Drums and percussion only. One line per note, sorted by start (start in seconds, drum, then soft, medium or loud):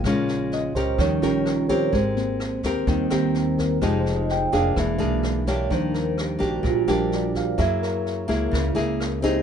0.04 kick soft
0.04 cross-stick medium
0.04 snare soft
0.28 snare soft
0.52 snare soft
0.75 kick soft
0.75 snare soft
0.99 kick medium
0.99 cross-stick medium
0.99 snare soft
1.22 snare soft
1.46 cross-stick medium
1.46 snare soft
1.69 kick soft
1.69 snare soft
1.93 kick medium
1.93 snare soft
2.17 snare soft
2.40 cross-stick medium
2.40 snare soft
2.63 kick soft
2.63 snare soft
2.87 kick medium
2.87 snare soft
3.10 cross-stick medium
3.10 snare soft
3.34 snare soft
3.58 kick soft
3.58 snare soft
3.81 kick medium
3.81 cross-stick medium
3.81 snare soft
4.06 snare soft
4.29 snare soft
4.53 kick soft
4.53 snare soft
4.76 kick medium
4.76 cross-stick medium
4.76 snare soft
5.00 snare soft
5.23 cross-stick medium
5.23 snare soft
5.47 kick soft
5.47 snare soft
5.71 kick soft
5.71 snare soft
5.94 snare soft
6.18 cross-stick medium
6.18 snare soft
6.41 kick soft
6.41 snare soft
6.64 kick medium
6.64 snare soft
6.88 cross-stick medium
6.88 snare soft
7.12 snare soft
7.35 kick soft
7.35 snare soft
7.59 kick medium
7.59 cross-stick medium
7.59 snare soft
7.83 snare soft
8.06 snare soft
8.29 kick soft
8.29 snare soft
8.53 kick medium
8.53 cross-stick medium
8.53 snare soft
8.77 snare soft
9.00 cross-stick medium
9.00 snare soft
9.24 kick soft
9.24 snare soft